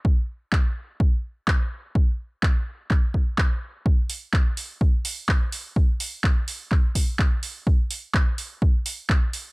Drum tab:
HH |--------|--------|-o-o-o-o|-o-o-o-o|
CP |--x---x-|--x-x-x-|--x---x-|--x-x-x-|
BD |o-o-o-o-|o-o-ooo-|o-o-o-o-|o-o-ooo-|

HH |-o-o-o-o|
CP |--x---x-|
BD |o-o-o-o-|